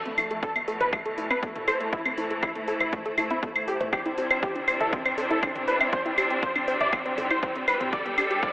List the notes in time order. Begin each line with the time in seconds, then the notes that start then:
Already playing: A2 B2 E3 E4 D5 A5, riser
0.06 A3 C4, closed hi-hat
0.18 A3 E4, open hi-hat, claves
0.31 A3 A4, closed hi-hat
0.37 C5
0.43 A3 A4, kick, closed hi-hat
0.56 A3 B3, closed hi-hat, claves
0.68 A3 A4, open hi-hat
0.80 B4 C5, closed hi-hat, mid tom
0.93 A3, kick, closed hi-hat, claves
1.05 A3 A4, closed hi-hat
1.18 A3 E4, open hi-hat
1.30 C4 B4, closed hi-hat, claves
1.43 A3 B3, kick, closed hi-hat
1.56 A3, closed hi-hat, mid tom
1.68 A4 C5, open hi-hat, claves
1.80 A3 C5, closed hi-hat
1.93 A3 E4, kick, closed hi-hat
2.05 A3 C4, closed hi-hat, claves
2.18 A3 E4, open hi-hat
2.30 A3 A4, closed hi-hat
2.43 A3 E4, kick, closed hi-hat, claves
2.55 A3 B3, closed hi-hat
2.68 A3 A4, open hi-hat
2.80 E4 C5, closed hi-hat, mid tom, claves
2.93 A3, kick, closed hi-hat
3.05 A3 A4, closed hi-hat
3.18 A3 E4, mid tom, open hi-hat, claves
3.30 C4 E4, closed hi-hat
3.43 A3 B3, kick, closed hi-hat
3.56 A3, closed hi-hat, claves
3.68 G4 A4, open hi-hat
3.80 A3 C5, closed hi-hat, mid tom
3.93 C3 G3 C4 D4 G4, kick, closed hi-hat, claves
4.06 C4 E4, closed hi-hat
4.18 C4 G4, open hi-hat
4.30 C4 C5, closed hi-hat, claves
4.43 C4 G4, kick, closed hi-hat
4.55 C4 D4, closed hi-hat
4.68 C4 C5, open hi-hat, claves
4.79 A4 E5 G5, closed hi-hat, mid tom
4.93 C4, kick, closed hi-hat
5.05 C4 C5, closed hi-hat, claves
5.18 C4 A4, open hi-hat
5.30 E4 A4, closed hi-hat
5.43 C4 D4, kick, closed hi-hat, claves
5.56 C4, closed hi-hat, mid tom
5.68 B4 C5, open hi-hat
5.80 C4 E5, closed hi-hat, claves
5.93 C4 C5, kick, closed hi-hat
6.06 C4 E4, closed hi-hat
6.18 C4 G4, open hi-hat, claves
6.30 C4 C5, closed hi-hat
6.43 C4 C5, kick, closed hi-hat
6.56 C4 D4, closed hi-hat, claves
6.68 C4 C5, open hi-hat
6.80 D5 E5, closed hi-hat, mid tom
6.93 C4, kick, closed hi-hat, claves
7.06 C4 C5, closed hi-hat
7.18 C4 A4, mid tom, open hi-hat
7.31 E4 C5, closed hi-hat, claves
7.43 C4 C5, kick, closed hi-hat
7.55 C4, closed hi-hat
7.68 B4 C5, open hi-hat, claves
7.80 C4, closed hi-hat, mid tom
7.93 G3 D4 A4 D5, kick, closed hi-hat, mid tom
8.05 B3 G4, closed hi-hat
8.18 D4 G4, open hi-hat, claves
8.30 G4, closed hi-hat
8.38 B4
8.43 G3 D5, kick, closed hi-hat, mid tom